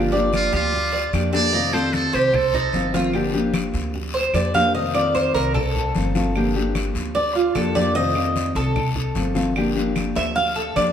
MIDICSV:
0, 0, Header, 1, 7, 480
1, 0, Start_track
1, 0, Key_signature, -2, "minor"
1, 0, Tempo, 401338
1, 1837, Time_signature, 4, 2, 24, 8
1, 13065, End_track
2, 0, Start_track
2, 0, Title_t, "Cuban tres"
2, 0, Program_c, 0, 25
2, 0, Note_on_c, 0, 65, 76
2, 138, Note_off_c, 0, 65, 0
2, 143, Note_on_c, 0, 74, 72
2, 615, Note_off_c, 0, 74, 0
2, 631, Note_on_c, 0, 67, 82
2, 1099, Note_off_c, 0, 67, 0
2, 1106, Note_on_c, 0, 74, 71
2, 1577, Note_off_c, 0, 74, 0
2, 1587, Note_on_c, 0, 69, 82
2, 1825, Note_off_c, 0, 69, 0
2, 1826, Note_on_c, 0, 63, 78
2, 2064, Note_off_c, 0, 63, 0
2, 2070, Note_on_c, 0, 69, 74
2, 2539, Note_off_c, 0, 69, 0
2, 2550, Note_on_c, 0, 72, 82
2, 3019, Note_off_c, 0, 72, 0
2, 3043, Note_on_c, 0, 63, 81
2, 3506, Note_off_c, 0, 63, 0
2, 3519, Note_on_c, 0, 65, 79
2, 3751, Note_off_c, 0, 65, 0
2, 4950, Note_on_c, 0, 72, 86
2, 5186, Note_off_c, 0, 72, 0
2, 5193, Note_on_c, 0, 74, 77
2, 5428, Note_off_c, 0, 74, 0
2, 5435, Note_on_c, 0, 77, 103
2, 5669, Note_off_c, 0, 77, 0
2, 5676, Note_on_c, 0, 75, 85
2, 5909, Note_off_c, 0, 75, 0
2, 5915, Note_on_c, 0, 74, 92
2, 6149, Note_off_c, 0, 74, 0
2, 6155, Note_on_c, 0, 72, 82
2, 6387, Note_off_c, 0, 72, 0
2, 6392, Note_on_c, 0, 70, 87
2, 6625, Note_off_c, 0, 70, 0
2, 6630, Note_on_c, 0, 69, 84
2, 8025, Note_off_c, 0, 69, 0
2, 8548, Note_on_c, 0, 74, 93
2, 8785, Note_off_c, 0, 74, 0
2, 8793, Note_on_c, 0, 65, 67
2, 9027, Note_off_c, 0, 65, 0
2, 9030, Note_on_c, 0, 69, 85
2, 9265, Note_off_c, 0, 69, 0
2, 9271, Note_on_c, 0, 74, 101
2, 9504, Note_off_c, 0, 74, 0
2, 9509, Note_on_c, 0, 75, 110
2, 10184, Note_off_c, 0, 75, 0
2, 10239, Note_on_c, 0, 69, 91
2, 11388, Note_off_c, 0, 69, 0
2, 12154, Note_on_c, 0, 76, 101
2, 12381, Note_off_c, 0, 76, 0
2, 12386, Note_on_c, 0, 77, 99
2, 12622, Note_off_c, 0, 77, 0
2, 12625, Note_on_c, 0, 69, 74
2, 12862, Note_off_c, 0, 69, 0
2, 12870, Note_on_c, 0, 74, 87
2, 13065, Note_off_c, 0, 74, 0
2, 13065, End_track
3, 0, Start_track
3, 0, Title_t, "Muted trumpet"
3, 0, Program_c, 1, 59
3, 430, Note_on_c, 1, 65, 95
3, 638, Note_off_c, 1, 65, 0
3, 658, Note_on_c, 1, 65, 99
3, 1319, Note_off_c, 1, 65, 0
3, 1607, Note_on_c, 1, 74, 120
3, 2075, Note_on_c, 1, 72, 98
3, 2093, Note_off_c, 1, 74, 0
3, 2314, Note_on_c, 1, 69, 98
3, 2332, Note_off_c, 1, 72, 0
3, 2568, Note_on_c, 1, 67, 86
3, 2586, Note_off_c, 1, 69, 0
3, 2814, Note_on_c, 1, 69, 85
3, 2832, Note_off_c, 1, 67, 0
3, 3526, Note_off_c, 1, 69, 0
3, 13065, End_track
4, 0, Start_track
4, 0, Title_t, "Nylon-string guitar"
4, 0, Program_c, 2, 24
4, 0, Note_on_c, 2, 50, 72
4, 0, Note_on_c, 2, 53, 75
4, 0, Note_on_c, 2, 58, 76
4, 0, Note_on_c, 2, 62, 76
4, 0, Note_on_c, 2, 67, 74
4, 140, Note_off_c, 2, 67, 0
4, 145, Note_off_c, 2, 62, 0
4, 149, Note_off_c, 2, 50, 0
4, 151, Note_off_c, 2, 53, 0
4, 154, Note_off_c, 2, 58, 0
4, 154, Note_on_c, 2, 67, 67
4, 159, Note_on_c, 2, 62, 61
4, 171, Note_on_c, 2, 58, 59
4, 178, Note_on_c, 2, 53, 60
4, 866, Note_off_c, 2, 67, 0
4, 868, Note_off_c, 2, 62, 0
4, 874, Note_off_c, 2, 58, 0
4, 878, Note_off_c, 2, 53, 0
4, 1349, Note_on_c, 2, 53, 46
4, 1361, Note_on_c, 2, 58, 52
4, 1365, Note_on_c, 2, 62, 55
4, 1374, Note_on_c, 2, 67, 54
4, 1576, Note_off_c, 2, 67, 0
4, 1583, Note_off_c, 2, 53, 0
4, 1584, Note_off_c, 2, 62, 0
4, 1589, Note_off_c, 2, 58, 0
4, 1590, Note_on_c, 2, 67, 63
4, 1598, Note_on_c, 2, 62, 65
4, 1610, Note_on_c, 2, 58, 59
4, 1615, Note_on_c, 2, 53, 60
4, 1824, Note_off_c, 2, 67, 0
4, 1828, Note_off_c, 2, 62, 0
4, 1832, Note_on_c, 2, 48, 74
4, 1833, Note_off_c, 2, 53, 0
4, 1834, Note_off_c, 2, 58, 0
4, 1838, Note_on_c, 2, 51, 79
4, 1841, Note_on_c, 2, 57, 71
4, 1849, Note_on_c, 2, 60, 74
4, 1858, Note_on_c, 2, 65, 79
4, 2056, Note_off_c, 2, 65, 0
4, 2065, Note_off_c, 2, 48, 0
4, 2068, Note_off_c, 2, 51, 0
4, 2068, Note_off_c, 2, 60, 0
4, 2069, Note_off_c, 2, 57, 0
4, 2070, Note_on_c, 2, 65, 65
4, 2083, Note_on_c, 2, 60, 64
4, 2089, Note_on_c, 2, 57, 59
4, 2097, Note_on_c, 2, 51, 58
4, 2771, Note_off_c, 2, 57, 0
4, 2773, Note_off_c, 2, 51, 0
4, 2777, Note_off_c, 2, 60, 0
4, 2779, Note_off_c, 2, 65, 0
4, 3273, Note_on_c, 2, 51, 48
4, 3283, Note_on_c, 2, 57, 47
4, 3289, Note_on_c, 2, 60, 54
4, 3294, Note_on_c, 2, 65, 50
4, 3499, Note_off_c, 2, 65, 0
4, 3506, Note_off_c, 2, 51, 0
4, 3509, Note_off_c, 2, 60, 0
4, 3511, Note_off_c, 2, 57, 0
4, 3514, Note_on_c, 2, 65, 72
4, 3524, Note_on_c, 2, 60, 62
4, 3530, Note_on_c, 2, 57, 68
4, 3536, Note_on_c, 2, 51, 55
4, 3746, Note_off_c, 2, 65, 0
4, 3748, Note_on_c, 2, 50, 69
4, 3751, Note_off_c, 2, 60, 0
4, 3752, Note_off_c, 2, 51, 0
4, 3754, Note_off_c, 2, 57, 0
4, 3757, Note_on_c, 2, 53, 69
4, 3761, Note_on_c, 2, 58, 76
4, 3769, Note_on_c, 2, 62, 72
4, 3771, Note_on_c, 2, 67, 77
4, 3975, Note_off_c, 2, 67, 0
4, 3983, Note_off_c, 2, 50, 0
4, 3987, Note_off_c, 2, 53, 0
4, 3988, Note_off_c, 2, 62, 0
4, 3989, Note_off_c, 2, 58, 0
4, 3990, Note_on_c, 2, 67, 70
4, 4002, Note_on_c, 2, 62, 72
4, 4008, Note_on_c, 2, 58, 63
4, 4014, Note_on_c, 2, 53, 55
4, 4704, Note_off_c, 2, 67, 0
4, 4709, Note_off_c, 2, 58, 0
4, 4710, Note_off_c, 2, 62, 0
4, 4714, Note_off_c, 2, 53, 0
4, 5190, Note_on_c, 2, 53, 45
4, 5199, Note_on_c, 2, 58, 50
4, 5204, Note_on_c, 2, 62, 49
4, 5211, Note_on_c, 2, 67, 50
4, 5421, Note_off_c, 2, 67, 0
4, 5424, Note_off_c, 2, 53, 0
4, 5429, Note_off_c, 2, 58, 0
4, 5431, Note_off_c, 2, 62, 0
4, 5436, Note_on_c, 2, 67, 65
4, 5444, Note_on_c, 2, 62, 63
4, 5447, Note_on_c, 2, 58, 64
4, 5457, Note_on_c, 2, 53, 58
4, 5667, Note_off_c, 2, 67, 0
4, 5671, Note_off_c, 2, 62, 0
4, 5673, Note_off_c, 2, 58, 0
4, 5674, Note_on_c, 2, 48, 66
4, 5677, Note_off_c, 2, 53, 0
4, 5685, Note_on_c, 2, 51, 65
4, 5687, Note_on_c, 2, 57, 74
4, 5693, Note_on_c, 2, 60, 74
4, 5700, Note_on_c, 2, 65, 71
4, 5898, Note_off_c, 2, 65, 0
4, 5905, Note_off_c, 2, 60, 0
4, 5906, Note_off_c, 2, 48, 0
4, 5911, Note_off_c, 2, 51, 0
4, 5912, Note_off_c, 2, 57, 0
4, 5912, Note_on_c, 2, 65, 73
4, 5920, Note_on_c, 2, 60, 69
4, 5926, Note_on_c, 2, 57, 62
4, 5931, Note_on_c, 2, 51, 61
4, 6629, Note_off_c, 2, 60, 0
4, 6632, Note_off_c, 2, 57, 0
4, 6634, Note_off_c, 2, 51, 0
4, 6648, Note_off_c, 2, 65, 0
4, 7121, Note_on_c, 2, 51, 46
4, 7129, Note_on_c, 2, 57, 54
4, 7138, Note_on_c, 2, 60, 53
4, 7142, Note_on_c, 2, 65, 56
4, 7345, Note_off_c, 2, 65, 0
4, 7349, Note_off_c, 2, 51, 0
4, 7353, Note_off_c, 2, 57, 0
4, 7353, Note_off_c, 2, 60, 0
4, 7360, Note_on_c, 2, 65, 76
4, 7367, Note_on_c, 2, 60, 67
4, 7377, Note_on_c, 2, 57, 65
4, 7380, Note_on_c, 2, 51, 61
4, 7588, Note_off_c, 2, 65, 0
4, 7592, Note_off_c, 2, 60, 0
4, 7597, Note_off_c, 2, 57, 0
4, 7599, Note_off_c, 2, 51, 0
4, 7601, Note_on_c, 2, 50, 74
4, 7610, Note_on_c, 2, 53, 74
4, 7615, Note_on_c, 2, 58, 76
4, 7620, Note_on_c, 2, 67, 79
4, 7621, Note_on_c, 2, 62, 78
4, 7829, Note_off_c, 2, 50, 0
4, 7831, Note_off_c, 2, 67, 0
4, 7833, Note_off_c, 2, 53, 0
4, 7836, Note_off_c, 2, 58, 0
4, 7836, Note_off_c, 2, 62, 0
4, 7846, Note_on_c, 2, 67, 70
4, 7851, Note_on_c, 2, 62, 63
4, 7859, Note_on_c, 2, 58, 55
4, 7863, Note_on_c, 2, 53, 60
4, 8551, Note_off_c, 2, 67, 0
4, 8553, Note_off_c, 2, 58, 0
4, 8554, Note_off_c, 2, 62, 0
4, 8562, Note_off_c, 2, 53, 0
4, 9035, Note_on_c, 2, 53, 50
4, 9046, Note_on_c, 2, 58, 50
4, 9054, Note_on_c, 2, 62, 52
4, 9055, Note_on_c, 2, 67, 53
4, 9262, Note_off_c, 2, 67, 0
4, 9265, Note_off_c, 2, 62, 0
4, 9266, Note_off_c, 2, 53, 0
4, 9271, Note_off_c, 2, 58, 0
4, 9277, Note_on_c, 2, 67, 74
4, 9279, Note_on_c, 2, 62, 68
4, 9292, Note_on_c, 2, 58, 59
4, 9294, Note_on_c, 2, 53, 57
4, 9506, Note_off_c, 2, 67, 0
4, 9508, Note_off_c, 2, 62, 0
4, 9513, Note_off_c, 2, 53, 0
4, 9513, Note_on_c, 2, 48, 73
4, 9514, Note_off_c, 2, 58, 0
4, 9518, Note_on_c, 2, 51, 75
4, 9524, Note_on_c, 2, 57, 74
4, 9528, Note_on_c, 2, 60, 77
4, 9531, Note_on_c, 2, 65, 78
4, 9743, Note_off_c, 2, 65, 0
4, 9745, Note_off_c, 2, 48, 0
4, 9747, Note_off_c, 2, 51, 0
4, 9750, Note_off_c, 2, 57, 0
4, 9752, Note_off_c, 2, 60, 0
4, 9758, Note_on_c, 2, 65, 69
4, 9772, Note_on_c, 2, 60, 69
4, 9778, Note_on_c, 2, 57, 56
4, 9779, Note_on_c, 2, 51, 57
4, 10458, Note_off_c, 2, 51, 0
4, 10464, Note_off_c, 2, 57, 0
4, 10464, Note_off_c, 2, 60, 0
4, 10478, Note_off_c, 2, 65, 0
4, 10948, Note_on_c, 2, 51, 51
4, 10958, Note_on_c, 2, 57, 51
4, 10963, Note_on_c, 2, 60, 55
4, 10967, Note_on_c, 2, 65, 49
4, 11166, Note_off_c, 2, 65, 0
4, 11173, Note_off_c, 2, 60, 0
4, 11180, Note_off_c, 2, 57, 0
4, 11180, Note_on_c, 2, 65, 74
4, 11182, Note_off_c, 2, 51, 0
4, 11187, Note_on_c, 2, 60, 65
4, 11194, Note_on_c, 2, 57, 64
4, 11205, Note_on_c, 2, 51, 53
4, 11417, Note_off_c, 2, 65, 0
4, 11421, Note_off_c, 2, 60, 0
4, 11424, Note_off_c, 2, 57, 0
4, 11430, Note_off_c, 2, 51, 0
4, 11434, Note_on_c, 2, 50, 70
4, 11439, Note_on_c, 2, 53, 69
4, 11446, Note_on_c, 2, 58, 74
4, 11449, Note_on_c, 2, 62, 74
4, 11456, Note_on_c, 2, 67, 81
4, 11652, Note_off_c, 2, 67, 0
4, 11660, Note_off_c, 2, 62, 0
4, 11664, Note_off_c, 2, 50, 0
4, 11666, Note_off_c, 2, 58, 0
4, 11667, Note_off_c, 2, 53, 0
4, 11667, Note_on_c, 2, 67, 75
4, 11675, Note_on_c, 2, 62, 67
4, 11680, Note_on_c, 2, 58, 65
4, 11686, Note_on_c, 2, 53, 63
4, 12380, Note_off_c, 2, 67, 0
4, 12383, Note_off_c, 2, 58, 0
4, 12384, Note_off_c, 2, 62, 0
4, 12393, Note_off_c, 2, 53, 0
4, 12863, Note_on_c, 2, 53, 50
4, 12874, Note_on_c, 2, 58, 47
4, 12877, Note_on_c, 2, 62, 49
4, 12886, Note_on_c, 2, 67, 53
4, 13065, Note_off_c, 2, 53, 0
4, 13065, Note_off_c, 2, 58, 0
4, 13065, Note_off_c, 2, 62, 0
4, 13065, Note_off_c, 2, 67, 0
4, 13065, End_track
5, 0, Start_track
5, 0, Title_t, "Upright bass"
5, 0, Program_c, 3, 32
5, 0, Note_on_c, 3, 31, 85
5, 562, Note_off_c, 3, 31, 0
5, 633, Note_on_c, 3, 38, 97
5, 1307, Note_off_c, 3, 38, 0
5, 1353, Note_on_c, 3, 41, 86
5, 2483, Note_off_c, 3, 41, 0
5, 2552, Note_on_c, 3, 36, 84
5, 3227, Note_off_c, 3, 36, 0
5, 3275, Note_on_c, 3, 31, 81
5, 4405, Note_off_c, 3, 31, 0
5, 4470, Note_on_c, 3, 38, 97
5, 5146, Note_off_c, 3, 38, 0
5, 5185, Note_on_c, 3, 41, 86
5, 6319, Note_off_c, 3, 41, 0
5, 6390, Note_on_c, 3, 36, 89
5, 7066, Note_off_c, 3, 36, 0
5, 7116, Note_on_c, 3, 31, 88
5, 8244, Note_off_c, 3, 31, 0
5, 8308, Note_on_c, 3, 38, 93
5, 8984, Note_off_c, 3, 38, 0
5, 9035, Note_on_c, 3, 41, 92
5, 10163, Note_off_c, 3, 41, 0
5, 10227, Note_on_c, 3, 36, 92
5, 10903, Note_off_c, 3, 36, 0
5, 10946, Note_on_c, 3, 31, 91
5, 12077, Note_off_c, 3, 31, 0
5, 12154, Note_on_c, 3, 38, 94
5, 12825, Note_off_c, 3, 38, 0
5, 12870, Note_on_c, 3, 41, 86
5, 13065, Note_off_c, 3, 41, 0
5, 13065, End_track
6, 0, Start_track
6, 0, Title_t, "Muted nylon-string guitar strokes"
6, 882, Note_on_c, 9, 29, 62
6, 1001, Note_off_c, 9, 29, 0
6, 2783, Note_on_c, 9, 29, 54
6, 2903, Note_off_c, 9, 29, 0
6, 4717, Note_on_c, 9, 29, 65
6, 4837, Note_off_c, 9, 29, 0
6, 6641, Note_on_c, 9, 29, 60
6, 6761, Note_off_c, 9, 29, 0
6, 8560, Note_on_c, 9, 29, 69
6, 8680, Note_off_c, 9, 29, 0
6, 10471, Note_on_c, 9, 29, 62
6, 10591, Note_off_c, 9, 29, 0
6, 12393, Note_on_c, 9, 29, 58
6, 12513, Note_off_c, 9, 29, 0
6, 13065, End_track
7, 0, Start_track
7, 0, Title_t, "Drums"
7, 165, Note_on_c, 9, 63, 33
7, 284, Note_off_c, 9, 63, 0
7, 390, Note_on_c, 9, 73, 69
7, 402, Note_on_c, 9, 63, 100
7, 403, Note_on_c, 9, 75, 71
7, 509, Note_off_c, 9, 73, 0
7, 521, Note_off_c, 9, 63, 0
7, 523, Note_off_c, 9, 75, 0
7, 625, Note_on_c, 9, 73, 69
7, 745, Note_off_c, 9, 73, 0
7, 868, Note_on_c, 9, 74, 71
7, 883, Note_on_c, 9, 63, 37
7, 987, Note_off_c, 9, 74, 0
7, 1002, Note_off_c, 9, 63, 0
7, 1123, Note_on_c, 9, 63, 36
7, 1242, Note_off_c, 9, 63, 0
7, 1353, Note_on_c, 9, 73, 68
7, 1358, Note_on_c, 9, 63, 78
7, 1362, Note_on_c, 9, 75, 68
7, 1473, Note_off_c, 9, 73, 0
7, 1478, Note_off_c, 9, 63, 0
7, 1482, Note_off_c, 9, 75, 0
7, 1596, Note_on_c, 9, 73, 74
7, 1715, Note_off_c, 9, 73, 0
7, 1830, Note_on_c, 9, 74, 68
7, 1841, Note_on_c, 9, 63, 35
7, 1949, Note_off_c, 9, 74, 0
7, 1961, Note_off_c, 9, 63, 0
7, 2074, Note_on_c, 9, 75, 66
7, 2082, Note_on_c, 9, 63, 35
7, 2193, Note_off_c, 9, 75, 0
7, 2202, Note_off_c, 9, 63, 0
7, 2307, Note_on_c, 9, 73, 72
7, 2320, Note_on_c, 9, 63, 60
7, 2427, Note_off_c, 9, 73, 0
7, 2440, Note_off_c, 9, 63, 0
7, 2545, Note_on_c, 9, 73, 63
7, 2557, Note_on_c, 9, 63, 36
7, 2665, Note_off_c, 9, 73, 0
7, 2677, Note_off_c, 9, 63, 0
7, 2781, Note_on_c, 9, 74, 74
7, 2794, Note_on_c, 9, 75, 61
7, 2799, Note_on_c, 9, 63, 39
7, 2799, Note_on_c, 9, 64, 90
7, 2901, Note_off_c, 9, 74, 0
7, 2914, Note_off_c, 9, 75, 0
7, 2918, Note_off_c, 9, 63, 0
7, 2918, Note_off_c, 9, 64, 0
7, 3031, Note_on_c, 9, 63, 33
7, 3031, Note_on_c, 9, 64, 74
7, 3150, Note_off_c, 9, 63, 0
7, 3150, Note_off_c, 9, 64, 0
7, 3265, Note_on_c, 9, 73, 69
7, 3273, Note_on_c, 9, 63, 84
7, 3385, Note_off_c, 9, 73, 0
7, 3392, Note_off_c, 9, 63, 0
7, 3516, Note_on_c, 9, 73, 71
7, 3519, Note_on_c, 9, 63, 78
7, 3635, Note_off_c, 9, 73, 0
7, 3638, Note_off_c, 9, 63, 0
7, 3749, Note_on_c, 9, 75, 72
7, 3750, Note_on_c, 9, 74, 69
7, 3756, Note_on_c, 9, 63, 38
7, 3869, Note_off_c, 9, 75, 0
7, 3870, Note_off_c, 9, 74, 0
7, 3876, Note_off_c, 9, 63, 0
7, 3995, Note_on_c, 9, 63, 34
7, 4114, Note_off_c, 9, 63, 0
7, 4229, Note_on_c, 9, 63, 104
7, 4230, Note_on_c, 9, 73, 73
7, 4235, Note_on_c, 9, 75, 70
7, 4348, Note_off_c, 9, 63, 0
7, 4349, Note_off_c, 9, 73, 0
7, 4355, Note_off_c, 9, 75, 0
7, 4470, Note_on_c, 9, 73, 64
7, 4589, Note_off_c, 9, 73, 0
7, 4711, Note_on_c, 9, 74, 76
7, 4718, Note_on_c, 9, 63, 37
7, 4831, Note_off_c, 9, 74, 0
7, 4837, Note_off_c, 9, 63, 0
7, 4961, Note_on_c, 9, 63, 35
7, 5081, Note_off_c, 9, 63, 0
7, 5187, Note_on_c, 9, 75, 66
7, 5197, Note_on_c, 9, 73, 73
7, 5202, Note_on_c, 9, 63, 79
7, 5307, Note_off_c, 9, 75, 0
7, 5316, Note_off_c, 9, 73, 0
7, 5322, Note_off_c, 9, 63, 0
7, 5432, Note_on_c, 9, 73, 71
7, 5437, Note_on_c, 9, 63, 71
7, 5551, Note_off_c, 9, 73, 0
7, 5557, Note_off_c, 9, 63, 0
7, 5675, Note_on_c, 9, 63, 38
7, 5682, Note_on_c, 9, 74, 75
7, 5795, Note_off_c, 9, 63, 0
7, 5801, Note_off_c, 9, 74, 0
7, 5913, Note_on_c, 9, 75, 70
7, 5924, Note_on_c, 9, 63, 33
7, 6032, Note_off_c, 9, 75, 0
7, 6043, Note_off_c, 9, 63, 0
7, 6157, Note_on_c, 9, 73, 71
7, 6160, Note_on_c, 9, 63, 62
7, 6276, Note_off_c, 9, 73, 0
7, 6280, Note_off_c, 9, 63, 0
7, 6396, Note_on_c, 9, 73, 69
7, 6402, Note_on_c, 9, 63, 35
7, 6516, Note_off_c, 9, 73, 0
7, 6522, Note_off_c, 9, 63, 0
7, 6638, Note_on_c, 9, 74, 77
7, 6639, Note_on_c, 9, 75, 69
7, 6646, Note_on_c, 9, 63, 39
7, 6646, Note_on_c, 9, 64, 90
7, 6758, Note_off_c, 9, 74, 0
7, 6759, Note_off_c, 9, 75, 0
7, 6765, Note_off_c, 9, 63, 0
7, 6765, Note_off_c, 9, 64, 0
7, 6887, Note_on_c, 9, 63, 35
7, 6887, Note_on_c, 9, 64, 69
7, 7007, Note_off_c, 9, 63, 0
7, 7007, Note_off_c, 9, 64, 0
7, 7113, Note_on_c, 9, 73, 67
7, 7121, Note_on_c, 9, 63, 84
7, 7233, Note_off_c, 9, 73, 0
7, 7241, Note_off_c, 9, 63, 0
7, 7356, Note_on_c, 9, 73, 77
7, 7358, Note_on_c, 9, 63, 84
7, 7476, Note_off_c, 9, 73, 0
7, 7478, Note_off_c, 9, 63, 0
7, 7594, Note_on_c, 9, 74, 72
7, 7601, Note_on_c, 9, 75, 72
7, 7606, Note_on_c, 9, 63, 36
7, 7714, Note_off_c, 9, 74, 0
7, 7721, Note_off_c, 9, 75, 0
7, 7725, Note_off_c, 9, 63, 0
7, 7839, Note_on_c, 9, 63, 35
7, 7959, Note_off_c, 9, 63, 0
7, 8074, Note_on_c, 9, 63, 97
7, 8074, Note_on_c, 9, 73, 69
7, 8074, Note_on_c, 9, 75, 70
7, 8193, Note_off_c, 9, 73, 0
7, 8193, Note_off_c, 9, 75, 0
7, 8194, Note_off_c, 9, 63, 0
7, 8313, Note_on_c, 9, 73, 67
7, 8432, Note_off_c, 9, 73, 0
7, 8556, Note_on_c, 9, 63, 37
7, 8556, Note_on_c, 9, 74, 73
7, 8676, Note_off_c, 9, 63, 0
7, 8676, Note_off_c, 9, 74, 0
7, 8799, Note_on_c, 9, 63, 33
7, 8918, Note_off_c, 9, 63, 0
7, 9030, Note_on_c, 9, 73, 65
7, 9036, Note_on_c, 9, 75, 69
7, 9037, Note_on_c, 9, 63, 81
7, 9149, Note_off_c, 9, 73, 0
7, 9156, Note_off_c, 9, 63, 0
7, 9156, Note_off_c, 9, 75, 0
7, 9278, Note_on_c, 9, 73, 73
7, 9281, Note_on_c, 9, 63, 71
7, 9397, Note_off_c, 9, 73, 0
7, 9401, Note_off_c, 9, 63, 0
7, 9510, Note_on_c, 9, 74, 65
7, 9511, Note_on_c, 9, 63, 35
7, 9630, Note_off_c, 9, 74, 0
7, 9631, Note_off_c, 9, 63, 0
7, 9753, Note_on_c, 9, 75, 62
7, 9754, Note_on_c, 9, 63, 37
7, 9872, Note_off_c, 9, 75, 0
7, 9873, Note_off_c, 9, 63, 0
7, 9995, Note_on_c, 9, 63, 62
7, 9995, Note_on_c, 9, 73, 76
7, 10114, Note_off_c, 9, 73, 0
7, 10115, Note_off_c, 9, 63, 0
7, 10230, Note_on_c, 9, 73, 66
7, 10235, Note_on_c, 9, 63, 38
7, 10350, Note_off_c, 9, 73, 0
7, 10354, Note_off_c, 9, 63, 0
7, 10473, Note_on_c, 9, 74, 74
7, 10475, Note_on_c, 9, 63, 38
7, 10475, Note_on_c, 9, 64, 86
7, 10477, Note_on_c, 9, 75, 68
7, 10593, Note_off_c, 9, 74, 0
7, 10595, Note_off_c, 9, 63, 0
7, 10595, Note_off_c, 9, 64, 0
7, 10597, Note_off_c, 9, 75, 0
7, 10707, Note_on_c, 9, 63, 37
7, 10707, Note_on_c, 9, 64, 67
7, 10826, Note_off_c, 9, 63, 0
7, 10826, Note_off_c, 9, 64, 0
7, 10945, Note_on_c, 9, 73, 64
7, 10954, Note_on_c, 9, 63, 82
7, 11065, Note_off_c, 9, 73, 0
7, 11074, Note_off_c, 9, 63, 0
7, 11187, Note_on_c, 9, 73, 75
7, 11195, Note_on_c, 9, 63, 78
7, 11306, Note_off_c, 9, 73, 0
7, 11314, Note_off_c, 9, 63, 0
7, 11431, Note_on_c, 9, 74, 76
7, 11434, Note_on_c, 9, 75, 78
7, 11446, Note_on_c, 9, 63, 36
7, 11551, Note_off_c, 9, 74, 0
7, 11554, Note_off_c, 9, 75, 0
7, 11566, Note_off_c, 9, 63, 0
7, 11681, Note_on_c, 9, 63, 34
7, 11801, Note_off_c, 9, 63, 0
7, 11907, Note_on_c, 9, 73, 71
7, 11910, Note_on_c, 9, 75, 67
7, 11916, Note_on_c, 9, 63, 95
7, 12027, Note_off_c, 9, 73, 0
7, 12030, Note_off_c, 9, 75, 0
7, 12035, Note_off_c, 9, 63, 0
7, 12146, Note_on_c, 9, 73, 62
7, 12266, Note_off_c, 9, 73, 0
7, 12389, Note_on_c, 9, 74, 74
7, 12402, Note_on_c, 9, 63, 39
7, 12509, Note_off_c, 9, 74, 0
7, 12522, Note_off_c, 9, 63, 0
7, 12643, Note_on_c, 9, 63, 33
7, 12763, Note_off_c, 9, 63, 0
7, 12873, Note_on_c, 9, 73, 73
7, 12877, Note_on_c, 9, 75, 67
7, 12879, Note_on_c, 9, 63, 83
7, 12993, Note_off_c, 9, 73, 0
7, 12997, Note_off_c, 9, 75, 0
7, 12999, Note_off_c, 9, 63, 0
7, 13065, End_track
0, 0, End_of_file